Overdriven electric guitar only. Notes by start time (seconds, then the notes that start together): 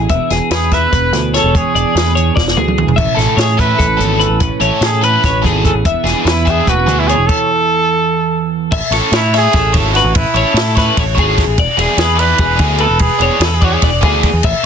3.15 A3 C#4 E4 A4
3.57 A3 C#4 E4 A4
3.97 A3 C#4 E4 A4
4.60 A3 C#4 E4 A4
5.01 A3 C#4 E4 A4
5.42 A3 C#4 E4 A4
6.04 E3 B3 D4 G#4
6.45 E3 B3 D4 G#4
6.86 E3 B3 D4 G#4
8.92 C#4 E4 A4 C#5
9.34 C#4 E4 A4 C#5
9.73 C#4 E4 A4 C#5
10.34 C#4 E4 A4 C#5
10.75 C#4 E4 A4 C#5
11.15 C#4 E4 A4 C#5
11.77 B3 E4 G#4 D5
12.16 B3 E4 G#4 D5
12.56 B3 E4 G#4 D5
13.19 B3 E4 G#4 D5
13.61 B3 E4 G#4 D5
14.01 B3 E4 G#4 D5